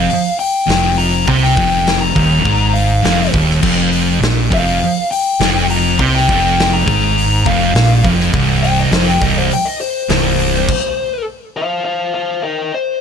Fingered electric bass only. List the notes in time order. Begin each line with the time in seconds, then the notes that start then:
0.68 F1
1.28 C2
1.57 F1
2.16 D#1
2.45 G#1
3.04 F1
3.34 D#1
3.63 F1
4.22 A#1
4.52 F1
5.40 F1
5.99 C2
6.29 F1
6.87 G#1
7.46 F1
7.74 A#1
8.05 F1
8.34 C1
8.91 F1
9.21 C1
10.09 C1